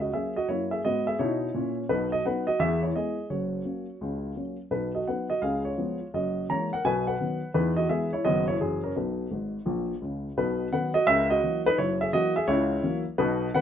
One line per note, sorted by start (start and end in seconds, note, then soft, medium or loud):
0.01 0.13 F#4 soft
0.01 0.12 D#5 medium
0.13 0.33 F#3 soft
0.13 0.33 A#3 soft
0.13 0.33 C#4 soft
0.13 0.35 G#4 soft
0.13 0.33 E5 medium
0.36 0.49 F#4 medium
0.36 0.47 D#5 medium
0.48 0.77 F#2 soft
0.48 0.78 A#3 soft
0.48 0.70 E4 soft
0.48 0.68 C#5 medium
0.71 0.84 G#4 medium
0.71 0.82 E5 medium
0.84 1.12 G#2 soft
0.84 1.13 B3 soft
0.84 1.06 F#4 medium
0.84 1.04 D#5 medium
1.07 1.19 G#4 medium
1.07 1.18 E5 medium
1.19 1.47 B2 medium
1.19 1.48 D#4 medium
1.19 1.74 E4 medium
1.19 1.69 C#5 medium
1.54 1.83 A#2 medium
1.54 1.84 C#4 medium
1.89 2.19 B1 medium
1.89 2.19 B2 medium
1.89 2.11 D#4 medium
1.89 2.09 B4 medium
2.12 2.25 F#4 soft
2.12 2.23 D#5 medium
2.25 2.45 F#3 soft
2.25 2.45 B3 soft
2.25 2.45 D#4 soft
2.25 2.47 B4 medium
2.25 2.45 F#5 medium
2.47 2.60 F#4 medium
2.47 2.58 D#5 medium
2.59 2.90 E2 medium
2.59 2.90 E3 medium
2.59 2.82 G#4 medium
2.59 2.79 E5 medium
2.82 2.95 E4 soft
2.82 2.93 C#5 medium
2.96 3.15 G#3 soft
2.96 3.15 B3 soft
2.96 3.16 E4 soft
2.96 3.29 G#4 medium
2.96 3.26 D#5 medium
3.30 3.60 F#1 soft
3.30 3.61 F#2 soft
3.30 4.56 F#4 soft
3.30 4.40 C#5 medium
3.65 3.85 F#3 soft
3.65 3.85 A#3 soft
3.65 3.85 C#4 soft
4.01 4.31 C#2 soft
4.01 4.31 C#3 soft
4.36 4.56 F#3 soft
4.36 4.56 A#3 soft
4.36 4.56 C#4 soft
4.71 5.01 B1 soft
4.71 5.02 B2 soft
4.71 4.93 D#4 soft
4.71 4.91 B4 medium
4.95 5.07 F#4 soft
4.95 5.05 D#5 medium
5.08 5.27 F#3 soft
5.08 5.27 B3 soft
5.08 5.28 D#4 soft
5.08 5.29 B4 soft
5.08 5.27 F#5 medium
5.30 5.42 F#4 soft
5.30 5.41 D#5 medium
5.42 5.72 C#2 medium
5.42 5.72 C#3 medium
5.42 5.64 G#4 medium
5.42 5.61 F5 medium
5.65 6.10 F4 soft
5.65 6.06 C#5 medium
5.78 5.97 F3 soft
5.78 5.97 G#3 soft
5.78 5.98 B3 soft
6.14 6.44 F#1 soft
6.14 6.44 F#2 medium
6.14 6.47 F#4 soft
6.14 6.44 D#5 medium
6.49 6.68 E3 soft
6.49 6.69 G#3 soft
6.49 6.69 A#3 soft
6.49 6.71 C#5 medium
6.49 6.69 A#5 medium
6.73 6.85 A#4 medium
6.73 6.83 F#5 medium
6.85 7.14 B1 medium
6.85 7.14 B2 medium
6.85 7.06 B4 medium
6.85 7.04 G#5 medium
7.07 7.52 B4 medium
7.07 7.48 F#5 medium
7.20 7.39 D#3 soft
7.20 7.39 F#3 soft
7.20 7.40 B3 soft
7.54 7.84 E2 medium
7.54 7.84 E3 medium
7.54 7.76 D#4 medium
7.54 7.74 B4 medium
7.76 7.89 F#4 medium
7.76 7.87 D#5 medium
7.89 8.09 E3 soft
7.89 8.09 G#3 soft
7.89 8.09 B3 soft
7.89 8.11 G#4 medium
7.89 8.09 E5 medium
8.13 8.25 E4 medium
8.13 8.23 C#5 medium
8.25 8.55 F#1 medium
8.25 8.55 F#2 medium
8.25 8.44 D#3 soft
8.25 8.45 F#3 soft
8.25 8.45 B3 soft
8.25 8.47 F#4 medium
8.25 8.44 D#5 medium
8.48 8.60 E4 medium
8.48 8.58 C#5 medium
8.61 8.91 F#1 soft
8.61 8.91 F#2 medium
8.61 8.80 E3 soft
8.61 8.81 F#3 soft
8.61 8.82 C#4 soft
8.61 8.80 G#4 medium
8.84 8.96 C#4 medium
8.84 8.94 A#4 medium
8.96 9.26 B1 soft
8.96 9.26 B2 soft
8.96 9.98 D#4 soft
8.96 9.86 B4 soft
9.31 9.57 G#1 soft
9.31 9.57 G#2 soft
9.66 9.92 A#1 medium
9.66 9.92 A#2 medium
10.02 10.28 C#2 soft
10.02 10.28 C#3 soft
10.37 10.67 B1 soft
10.37 10.67 B2 medium
10.37 10.70 D#4 medium
10.37 10.67 B4 medium
10.72 10.91 D#3 soft
10.72 10.92 F#3 soft
10.72 10.92 B3 soft
10.72 10.94 B4 medium
10.72 10.91 F#5 medium
10.94 11.06 F#4 medium
10.94 11.05 D#5 medium
11.07 11.37 C#2 medium
11.07 11.37 C#3 medium
11.07 11.29 A#4 medium
11.07 11.26 E5 loud
11.30 11.63 F#4 medium
11.30 11.60 D#5 medium
11.43 11.62 E3 soft
11.43 11.63 F#3 soft
11.43 11.63 A#3 soft
11.66 11.78 D#4 medium
11.66 11.76 B4 medium
11.78 12.08 F#1 medium
11.78 12.08 F#2 medium
11.78 11.99 E4 medium
11.78 11.97 C#5 medium
12.01 12.13 G#4 medium
12.01 12.11 E5 medium
12.13 12.32 E3 soft
12.13 12.32 F#3 soft
12.13 12.33 A#3 soft
12.13 12.35 F#4 medium
12.13 12.32 D#5 medium
12.36 12.48 G#4 medium
12.36 12.46 E5 medium
12.48 12.77 C#2 medium
12.48 12.77 C#3 medium
12.48 13.02 E4 medium
12.48 12.97 C#5 loud
12.83 13.02 E3 soft
12.83 13.03 F#3 soft
12.83 13.03 A#3 medium
13.18 13.48 B1 medium
13.18 13.48 B2 medium
13.18 13.52 D#4 medium
13.18 13.48 B4 medium
13.54 13.61 D#3 soft
13.54 13.61 F#3 soft
13.54 13.61 B3 soft
13.54 13.61 B4 medium
13.54 13.61 F#5 medium